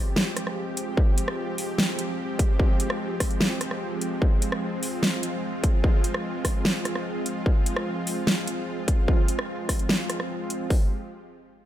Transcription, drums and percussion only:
0.16 snare
0.37 cross-stick, closed hi-hat
0.47 cross-stick
0.77 closed hi-hat
0.97 kick
1.18 closed hi-hat
1.28 cross-stick
1.58 open hi-hat
1.78 snare
1.99 closed hi-hat
2.39 kick, closed hi-hat
2.60 kick
2.80 closed hi-hat
2.90 cross-stick
3.20 kick, cross-stick, open hi-hat
3.31 closed hi-hat
3.41 snare
3.61 cross-stick, closed hi-hat
3.71 cross-stick
4.01 closed hi-hat
4.22 kick
4.42 closed hi-hat
4.52 cross-stick
4.83 open hi-hat
5.03 snare
5.23 closed hi-hat
5.64 kick, closed hi-hat
5.84 kick
6.04 closed hi-hat
6.14 cross-stick
6.45 kick, cross-stick, open hi-hat
6.65 snare
6.85 cross-stick, closed hi-hat
6.96 cross-stick
7.26 closed hi-hat
7.46 kick
7.66 closed hi-hat
7.77 cross-stick
8.07 open hi-hat
8.27 snare
8.47 closed hi-hat
8.88 kick, closed hi-hat
9.08 kick
9.28 closed hi-hat
9.39 cross-stick
9.69 kick, cross-stick, open hi-hat
9.79 closed hi-hat
9.89 snare
10.10 cross-stick, closed hi-hat
10.20 cross-stick
10.50 closed hi-hat
10.70 kick, open hi-hat

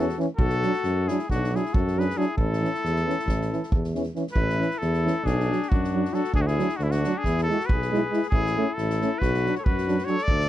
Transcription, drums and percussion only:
0.09 snare
0.20 snare
0.39 kick
0.49 snare
0.62 snare
0.73 snare
0.83 snare
1.08 snare
1.19 snare
1.30 kick, snare
1.44 snare
1.55 snare
1.65 snare
1.74 kick
1.87 snare
2.00 snare
2.10 snare
2.20 snare
2.38 kick
2.53 snare
2.64 snare
2.74 snare
2.85 snare
2.96 snare
3.10 snare
3.19 snare
3.28 kick, snare
3.41 snare
3.52 snare
3.63 snare
3.72 kick
3.84 snare
3.95 snare
4.03 snare
4.15 snare
4.27 snare
4.36 kick
4.49 snare
4.62 snare
4.71 snare
4.81 snare
4.93 snare
5.07 snare
5.26 kick, snare
5.40 snare
5.52 snare
5.62 snare
5.72 kick
5.84 snare
6.05 snare
6.14 snare
6.24 snare
6.34 kick
6.47 snare
6.59 snare
6.69 snare
6.79 snare
6.91 snare
7.04 snare
7.24 kick, snare
7.38 snare
7.50 snare
7.60 snare
7.69 kick
7.82 snare
7.94 snare
8.13 snare
8.22 snare
8.32 kick
8.46 snare
8.78 snare
8.90 snare
9.01 snare
9.22 kick, snare
9.34 snare
9.46 snare
9.55 snare
9.66 kick
9.78 snare
9.88 snare
9.98 snare
10.07 snare
10.18 snare
10.28 kick
10.40 snare

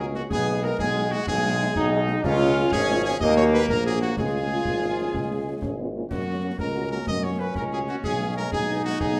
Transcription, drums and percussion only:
0.14 snare
0.30 concert bass drum, snare, crash
0.79 concert bass drum, snare
1.27 concert bass drum, snare
1.76 concert bass drum, snare
2.07 snare
2.24 concert bass drum, snare, crash
2.72 concert bass drum, snare
3.21 concert bass drum, snare
3.69 concert bass drum, snare
4.01 snare
4.17 concert bass drum, snare, crash
4.65 concert bass drum, snare
5.14 concert bass drum, snare
5.62 concert bass drum, snare
6.11 concert bass drum, snare, crash
6.58 concert bass drum, snare
7.07 concert bass drum, snare
7.55 concert bass drum, snare
7.88 snare
8.04 concert bass drum, snare, crash
8.52 concert bass drum, snare
9.00 concert bass drum, snare

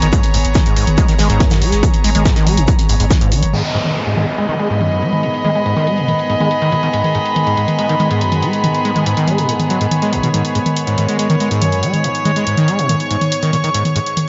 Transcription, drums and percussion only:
0.02 closed hi-hat
0.13 kick, closed hi-hat, shaker
0.23 closed hi-hat, mid tom
0.34 open hi-hat, shaker
0.45 closed hi-hat
0.54 kick, snare, closed hi-hat, mid tom, shaker
0.66 closed hi-hat
0.77 open hi-hat, shaker
0.87 closed hi-hat, mid tom
0.98 kick, closed hi-hat, shaker
1.08 closed hi-hat
1.19 snare, open hi-hat, mid tom, shaker
1.30 closed hi-hat
1.40 kick, snare, closed hi-hat, shaker
1.50 snare, closed hi-hat, mid tom, shaker
1.62 open hi-hat
1.72 snare, closed hi-hat, shaker
1.83 kick, closed hi-hat, mid tom, shaker
1.94 closed hi-hat
2.04 open hi-hat, shaker
2.15 closed hi-hat, mid tom
2.25 kick, snare, closed hi-hat, shaker
2.36 snare, closed hi-hat
2.47 open hi-hat, mid tom, shaker
2.57 closed hi-hat
2.68 kick, closed hi-hat, shaker
2.79 closed hi-hat, mid tom
2.89 open hi-hat, shaker
3.00 closed hi-hat
3.10 kick, snare, closed hi-hat, mid tom, shaker
3.21 closed hi-hat
3.32 open hi-hat, shaker
3.43 closed hi-hat, mid tom
3.53 closed hi-hat, mid tom
3.64 closed hi-hat
3.74 closed hi-hat
3.85 closed hi-hat, mid tom
3.96 closed hi-hat
4.06 closed hi-hat
4.17 closed hi-hat, mid tom
4.28 closed hi-hat
4.38 closed hi-hat
4.49 closed hi-hat, mid tom
4.59 closed hi-hat
4.70 closed hi-hat
4.81 closed hi-hat, mid tom
4.91 closed hi-hat
5.02 closed hi-hat
5.13 closed hi-hat, mid tom
5.23 closed hi-hat
5.34 closed hi-hat
5.45 closed hi-hat, mid tom
5.55 closed hi-hat
5.66 closed hi-hat
5.77 closed hi-hat, mid tom
5.87 closed hi-hat
5.98 closed hi-hat
6.08 closed hi-hat, mid tom
6.19 closed hi-hat
6.30 closed hi-hat
6.40 closed hi-hat, mid tom
6.51 closed hi-hat
6.62 closed hi-hat
6.72 closed hi-hat, mid tom
6.83 closed hi-hat
6.93 closed hi-hat
7.04 closed hi-hat, mid tom
7.15 closed hi-hat
7.26 closed hi-hat
7.36 closed hi-hat, mid tom
7.47 closed hi-hat
7.57 closed hi-hat
7.68 closed hi-hat, mid tom
7.79 closed hi-hat
7.89 closed hi-hat
8.00 closed hi-hat, mid tom
8.11 closed hi-hat
8.21 closed hi-hat
8.32 closed hi-hat, mid tom
8.42 closed hi-hat
8.53 closed hi-hat
8.64 closed hi-hat, mid tom
8.74 closed hi-hat
8.85 closed hi-hat
8.96 closed hi-hat, mid tom
9.06 closed hi-hat
9.17 closed hi-hat
9.28 closed hi-hat, mid tom
9.38 closed hi-hat
9.49 closed hi-hat
9.60 closed hi-hat, mid tom
9.70 closed hi-hat
9.81 closed hi-hat
9.91 closed hi-hat, mid tom
10.02 closed hi-hat
10.13 closed hi-hat
10.23 closed hi-hat, mid tom
10.34 closed hi-hat, mid tom
10.45 closed hi-hat
10.55 closed hi-hat
10.66 closed hi-hat, mid tom
10.77 closed hi-hat
10.87 closed hi-hat
10.98 closed hi-hat, mid tom
11.09 closed hi-hat
11.19 closed hi-hat
11.30 closed hi-hat, mid tom
11.40 closed hi-hat
11.51 closed hi-hat
11.62 closed hi-hat, mid tom
11.72 closed hi-hat
11.83 closed hi-hat
11.94 closed hi-hat, mid tom
12.04 closed hi-hat
12.15 closed hi-hat
12.25 closed hi-hat, mid tom
12.36 closed hi-hat
12.47 closed hi-hat
12.57 closed hi-hat, mid tom
12.68 closed hi-hat
12.79 closed hi-hat
12.89 closed hi-hat, mid tom
13.00 closed hi-hat
13.11 closed hi-hat
13.21 closed hi-hat, mid tom
13.32 closed hi-hat
13.43 closed hi-hat
13.53 closed hi-hat, mid tom
13.64 closed hi-hat
13.74 closed hi-hat
13.85 closed hi-hat, mid tom
13.96 closed hi-hat
14.06 closed hi-hat
14.17 closed hi-hat, mid tom

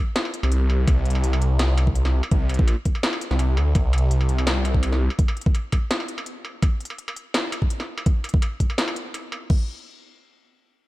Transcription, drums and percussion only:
0.16 snare, closed hi-hat
0.25 struck metal
0.34 closed hi-hat
0.43 struck metal
0.52 closed hi-hat
0.70 struck metal
0.88 kick, closed hi-hat, struck metal
1.06 closed hi-hat
1.10 closed hi-hat
1.15 struck metal
1.24 closed hi-hat
1.33 struck metal
1.42 closed hi-hat
1.59 snare, closed hi-hat, struck metal
1.78 closed hi-hat, struck metal
1.87 kick
1.95 closed hi-hat
2.05 snare, struck metal
2.23 struck metal
2.31 kick, closed hi-hat
2.49 closed hi-hat, struck metal
2.54 closed hi-hat
2.59 kick
2.68 closed hi-hat, struck metal
2.85 kick, closed hi-hat
2.95 struck metal
3.03 snare, closed hi-hat
3.13 struck metal
3.21 closed hi-hat
3.31 snare
3.39 closed hi-hat, struck metal
3.57 struck metal
3.75 kick, closed hi-hat, struck metal
3.93 closed hi-hat, struck metal
3.98 closed hi-hat
4.11 closed hi-hat
4.21 struck metal
4.29 closed hi-hat
4.38 struck metal
4.47 snare, closed hi-hat
4.65 closed hi-hat, struck metal
4.74 kick
4.83 closed hi-hat, struck metal
4.92 snare
5.10 struck metal
5.19 kick, closed hi-hat
5.28 struck metal
5.37 closed hi-hat
5.41 closed hi-hat
5.46 kick
5.55 closed hi-hat, struck metal
5.72 kick, closed hi-hat, struck metal
5.91 snare, closed hi-hat
6.00 struck metal
6.08 closed hi-hat
6.18 struck metal
6.26 closed hi-hat
6.45 struck metal
6.62 kick, closed hi-hat, struck metal
6.80 closed hi-hat
6.85 closed hi-hat
6.90 struck metal
6.98 closed hi-hat
7.08 struck metal
7.16 closed hi-hat
7.34 snare, closed hi-hat, struck metal
7.52 closed hi-hat, struck metal
7.62 kick
7.70 closed hi-hat
7.80 snare, struck metal
7.98 struck metal
8.06 kick, closed hi-hat
8.24 closed hi-hat, struck metal
8.29 closed hi-hat
8.34 kick
8.42 closed hi-hat, struck metal
8.60 kick, closed hi-hat
8.70 struck metal
8.78 snare, closed hi-hat
8.88 struck metal
8.96 closed hi-hat
9.14 closed hi-hat, struck metal
9.32 struck metal
9.50 kick, crash

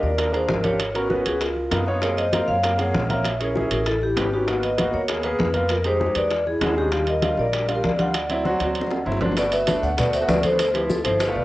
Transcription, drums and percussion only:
0.04 high conga
0.18 high bongo, high conga, high timbale
0.34 high conga, high timbale
0.49 high bongo, low bongo, high conga, low timbale
0.64 high conga, high timbale
0.80 high bongo, high conga, high timbale
0.94 high bongo, high conga, high timbale
1.10 high bongo, high conga
1.25 high conga, high timbale
1.41 high bongo, high conga, high timbale
1.56 high bongo, high conga
1.71 high bongo, low bongo, high conga, high timbale
1.86 high bongo
2.02 high bongo, high conga, high timbale
2.17 high conga, high timbale
2.33 high bongo, high conga, high timbale
2.48 high conga
2.63 high bongo, high conga, high timbale
2.79 high conga, high timbale
2.94 high bongo, low bongo, high conga, low timbale
3.10 high conga, high timbale
3.24 high bongo, high conga, high timbale
3.40 high bongo, high conga, high timbale
3.56 high bongo, high conga
3.71 high conga, high timbale
3.86 high bongo, high conga, high timbale
4.02 high bongo, high conga
4.17 high bongo, low bongo, high conga, high timbale, low timbale
4.32 high bongo
4.48 high bongo, high conga, high timbale
4.63 high conga, high timbale
4.78 high bongo, high conga, high timbale
4.95 high conga
5.08 high bongo, high conga, high timbale
5.23 high conga, high timbale
5.39 high bongo, low bongo, high conga, low timbale
5.54 high conga, high timbale
5.69 high bongo, high conga, high timbale
5.84 high bongo, high conga, high timbale
6.01 high bongo, high conga
6.15 high conga, high timbale
6.31 high bongo, high conga, high timbale
6.47 high bongo, high conga
6.61 high bongo, low bongo, high conga, high timbale, low timbale
6.77 high bongo
6.92 high bongo, high conga, high timbale
7.07 high conga, high timbale
7.22 high bongo, high conga, high timbale
7.38 high conga
7.53 high bongo, high conga, high timbale
7.69 high conga, high timbale
7.84 high bongo, low bongo, high conga
7.99 high conga, high timbale
8.14 high bongo, high conga, high timbale
8.30 high bongo, high conga, high timbale
8.45 high bongo, high conga
8.60 high bongo, high conga, high timbale
8.75 high conga, high timbale
8.81 low bongo
8.91 high bongo, high conga, high timbale
9.07 high conga
9.12 low bongo
9.21 low bongo, high conga, low timbale
9.32 low bongo
9.37 high bongo, high conga, high timbale, maracas
9.52 high conga, high timbale, maracas
9.67 high bongo, high conga, high timbale, maracas
9.83 high conga, maracas
9.98 high bongo, high conga, low conga, high timbale, maracas
10.13 high conga, high timbale, maracas
10.29 high bongo, low bongo, high conga, low timbale, maracas
10.43 high conga, high timbale, maracas
10.59 high bongo, high conga, high timbale, maracas
10.74 high bongo, high conga, high timbale
10.90 high bongo, high conga, maracas
11.05 high conga, high timbale, maracas
11.20 high bongo, high conga, high timbale, maracas
11.36 high bongo, high conga

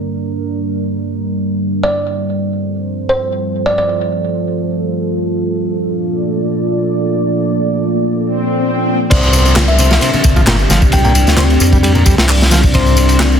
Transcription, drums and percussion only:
9.11 kick, crash, ride, tambourine
9.23 tambourine
9.33 ride, tambourine
9.45 ride, tambourine
9.56 snare, clap, ride, tambourine, high conga
9.68 tambourine
9.79 ride, tambourine, low conga
9.91 snare, tambourine
10.01 ride, tambourine
10.14 tambourine, high conga, low conga
10.24 kick, ride, tambourine
10.36 kick, tambourine
10.47 snare, clap, ride, tambourine
10.59 tambourine
10.70 snare, ride, tambourine, high conga
10.82 kick, tambourine
10.92 kick, ride, tambourine
11.05 tambourine
11.15 ride, tambourine
11.27 snare, tambourine
11.37 snare, clap, ride, tambourine, high conga
11.50 ride, tambourine
11.60 ride, tambourine, low conga
11.73 kick, tambourine
11.83 ride, tambourine
11.95 tambourine, high conga, low conga
12.06 kick, ride, tambourine
12.18 snare, tambourine
12.29 clap, open hi-hat, tambourine
12.41 snare, tambourine
12.51 snare, ride, tambourine, high conga
12.63 kick, tambourine
12.74 kick, ride, tambourine
12.86 tambourine
12.97 ride, tambourine
13.09 ride, tambourine
13.20 snare, clap, ride, tambourine, high conga
13.32 tambourine

